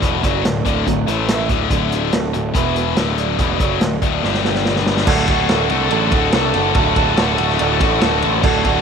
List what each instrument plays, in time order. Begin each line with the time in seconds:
0.02 picked electric bass E1, distorted electric guitar E2 B2 E3, twelve-string acoustic guitar D3 F#3 A3 D4 F#4 D5, kick, closed hi-hat
0.23 picked electric bass F#1, distorted electric guitar F#2 C#3 F#3, twelve-string acoustic guitar A3 D4 F#4 D5, kick, closed hi-hat
0.43 picked electric bass D1, distorted electric guitar D2 A2, twelve-string acoustic guitar A3 D4 F#4 D5, snare, closed hi-hat
0.65 picked electric bass D1, distorted electric guitar D2 A2 D3, twelve-string acoustic guitar A3 D4 F#4 D5, kick, closed hi-hat
0.86 picked electric bass D1, distorted electric guitar D2 A2, twelve-string acoustic guitar D3 F#3 A3 D4 F#4 D5, kick, closed hi-hat
1.07 picked electric bass A1, distorted electric guitar A2 E3 A3, twelve-string acoustic guitar E4 A4 E5, closed hi-hat
1.28 twelve-string acoustic guitar A3 E4 A4 E5, snare, closed hi-hat
1.49 picked electric bass D1, distorted electric guitar D2 A2 D3, twelve-string acoustic guitar D4 F#4 A4, kick, closed hi-hat
1.70 picked electric bass D1, distorted electric guitar D2 A2 D3, twelve-string acoustic guitar D3 A3 D4 F#4 A4, kick, closed hi-hat
1.92 twelve-string acoustic guitar D4 F#4 A4, closed hi-hat
2.12 picked electric bass D1, distorted electric guitar D2 A2, twelve-string acoustic guitar A3 D4 F#4 A4, snare, closed hi-hat
2.33 picked electric bass D1, distorted electric guitar D2 A2, twelve-string acoustic guitar D4 F#4 A4, closed hi-hat
2.54 picked electric bass E1, distorted electric guitar E2 B2 E3, twelve-string acoustic guitar E3 B3 E4 B4, kick, closed hi-hat
2.76 twelve-string acoustic guitar E4 B4, closed hi-hat
2.80 twelve-string acoustic guitar B3
2.96 picked electric bass D1, distorted electric guitar D2 A2 D3, twelve-string acoustic guitar A3 D4 F#4 D5, snare, closed hi-hat
3.18 twelve-string acoustic guitar A3 D4 F#4 D5, closed hi-hat
3.39 picked electric bass E1, distorted electric guitar E2 B2 E3, twelve-string acoustic guitar D3 F#3 A3 D4 F#4 D5, kick, closed hi-hat
3.60 picked electric bass F#1, distorted electric guitar F#2 C#3 F#3, twelve-string acoustic guitar A3 D4 F#4 D5, kick, closed hi-hat
3.80 picked electric bass D1, distorted electric guitar D2 A2, twelve-string acoustic guitar A3 D4 F#4 D5, snare, closed hi-hat
4.01 picked electric bass D1, distorted electric guitar D2 A2 D3, twelve-string acoustic guitar A3 D4 F#4 D5, kick, closed hi-hat
4.23 picked electric bass G1, distorted electric guitar G2 D3 G3, twelve-string acoustic guitar G3 D4 G4 D5, snare
4.34 snare
4.44 twelve-string acoustic guitar D4 G4 D5, snare
4.55 snare
4.65 twelve-string acoustic guitar G3 D4 G4 D5, snare
4.76 snare
4.85 twelve-string acoustic guitar D4 G4 D5, snare
4.97 snare
5.07 picked electric bass D1, distorted electric guitar D2 A2 D3 A3 F#4, twelve-string acoustic guitar D3 F#3 A3 D4 A4, tonewheel organ A3 D4 F#4 A4, grand piano A4 D5 F#5, kick, crash
5.28 picked electric bass D1, twelve-string acoustic guitar A3 D4 A4, distorted electric guitar A3 F#4, grand piano A4 D5 F#5, kick, ride
5.32 distorted electric guitar D3
5.49 picked electric bass D1, distorted electric guitar A2 D3 A3 F#4, twelve-string acoustic guitar F#3 A3 D4 A4, grand piano A4 D5 F#5, snare, ride
5.70 picked electric bass C2, twelve-string acoustic guitar A3 D4, distorted electric guitar A3 F#4, grand piano A4 D5 F#5, ride
5.74 distorted electric guitar D3
5.90 picked electric bass A1, distorted electric guitar D2 A2 D3 A3 F#4, twelve-string acoustic guitar D3 F#3 A3 D4 A4, grand piano A4 D5 A5, ride
6.11 picked electric bass D1, twelve-string acoustic guitar A3 D4 A4, distorted electric guitar A3 F#4, grand piano A4 D5 F#5, kick, ride
6.15 distorted electric guitar D3
6.32 picked electric bass C2, distorted electric guitar A2 D3 A3, twelve-string acoustic guitar F#3 A3 D4 A4, grand piano A4 D5 A5, snare, ride
6.36 distorted electric guitar F#4
6.53 picked electric bass F#1, twelve-string acoustic guitar A3 D4 A4, grand piano A4 D5 F#5, ride
6.74 picked electric bass D1, distorted electric guitar D2 A2 D3 A3 F#4, twelve-string acoustic guitar D3 F#3 A3 D4 A4, grand piano A4 D5 A5, kick, ride
6.96 picked electric bass D1, distorted electric guitar D3 A3 F#4, twelve-string acoustic guitar A3 D4 A4, grand piano A4 D5 A5, kick, ride
7.17 picked electric bass D1, distorted electric guitar A2 D3 A3 F#4, twelve-string acoustic guitar F#3 A3 D4 A4, grand piano A4 D5 F#5, snare, ride
7.38 picked electric bass D1, distorted electric guitar D3 A3 F#4, twelve-string acoustic guitar A3 D4 A4, grand piano A4 D5 F#5, ride
7.50 snare
7.59 picked electric bass D1, distorted electric guitar D2 A2 D3 A3 F#4, twelve-string acoustic guitar D3 F#3 A3 D4 A4, grand piano A4 D5 F#5, ride
7.80 picked electric bass A1, twelve-string acoustic guitar A3 D4 A4, distorted electric guitar A3 F#4, grand piano A4 D5 F#5, kick, ride
7.84 distorted electric guitar D3
8.01 picked electric bass D1, distorted electric guitar A2 D3 A3 F#4, twelve-string acoustic guitar F#3 A3 D4 A4, grand piano A4 D5 F#5, snare, ride
8.22 picked electric bass A1, twelve-string acoustic guitar A3 D4 A4, grand piano A4 D5 F#5, ride
8.43 picked electric bass D1, distorted electric guitar D2 A2 D3 A3 F#4, twelve-string acoustic guitar D3 F#3 A3 D4 A4, tonewheel organ A3 D4 F#4, grand piano A4 D5 F#5, kick, crash
8.64 picked electric bass D1, distorted electric guitar D3 A3 F#4, twelve-string acoustic guitar A3 D4, grand piano A4 D5 F#5, kick, ride